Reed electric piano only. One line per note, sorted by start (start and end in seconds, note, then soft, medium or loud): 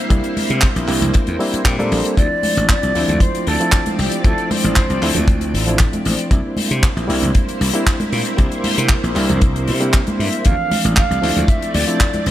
0.10 0.85 G3 medium
0.10 0.85 A#3 medium
0.10 0.85 C4 medium
0.10 0.86 D4 medium
0.10 0.86 E4 medium
0.88 1.37 G3 medium
0.88 1.37 A#3 medium
0.88 1.38 C4 medium
0.88 1.38 D4 medium
0.88 1.38 E4 medium
1.39 1.63 G3 medium
1.39 1.63 A#3 medium
1.39 1.63 C4 medium
1.39 1.63 D4 medium
1.39 1.63 E4 medium
1.65 1.76 G3 medium
1.65 1.76 A#3 medium
1.65 1.76 C4 medium
1.65 1.76 D4 medium
1.65 1.77 G4 medium
1.79 2.14 G3 medium
1.79 2.14 A#3 medium
1.79 2.15 C4 medium
1.79 2.15 D4 medium
1.79 2.15 A4 loud
2.17 2.92 F3 medium
2.17 2.92 A3 medium
2.17 2.92 C4 medium
2.17 2.93 D4 medium
2.17 2.93 E4 medium
2.94 3.57 F3 medium
2.94 3.57 A3 medium
2.94 3.57 C4 medium
2.94 3.58 D4 medium
2.94 3.58 E4 medium
3.60 4.21 F3 medium
3.60 4.22 A3 medium
3.60 4.22 C4 medium
3.60 4.22 D4 medium
3.60 4.22 E4 medium
4.24 4.99 F3 medium
4.24 4.99 A3 medium
4.24 5.00 C4 medium
4.24 5.00 D4 medium
4.24 5.00 E4 medium
5.02 5.64 F3 medium
5.02 5.64 A3 medium
5.02 5.64 C4 medium
5.02 5.65 D4 medium
5.02 5.65 E4 medium
5.67 6.28 F3 medium
5.67 6.28 A3 medium
5.67 6.29 C4 medium
5.67 6.29 D4 medium
5.67 6.29 E4 medium
6.31 7.06 G3 medium
6.31 7.06 A#3 medium
6.31 7.06 C4 medium
6.31 7.07 D4 medium
6.31 7.07 E4 medium
7.08 7.70 G3 medium
7.08 7.71 A#3 medium
7.08 7.71 C4 medium
7.08 7.71 D4 medium
7.08 7.71 E4 medium
7.73 8.35 G3 medium
7.73 8.35 A#3 medium
7.73 8.35 C4 medium
7.73 8.36 D4 medium
7.73 8.36 E4 medium
8.37 9.13 G3 medium
8.37 9.13 A#3 medium
8.37 9.13 C4 medium
8.37 9.13 D4 medium
8.37 9.14 E4 medium
9.15 9.77 G3 medium
9.15 9.78 A#3 medium
9.15 9.78 C4 medium
9.15 9.78 D4 medium
9.15 9.79 E4 medium
9.80 10.42 G3 medium
9.80 10.42 A#3 medium
9.80 10.42 C4 medium
9.80 10.43 D4 medium
9.80 10.43 E4 medium
10.44 11.20 E3 medium
10.44 11.19 F3 medium
10.44 11.20 A3 medium
10.44 11.20 C4 medium
10.44 11.20 D4 medium
11.22 11.84 F3 medium
11.22 11.85 A3 medium
11.22 11.85 C4 medium
11.22 11.85 D4 medium
11.22 11.85 E4 medium
11.87 12.31 F3 medium
11.87 12.31 A3 medium
11.87 12.31 C4 medium
11.87 12.31 D4 medium
11.87 12.31 E4 medium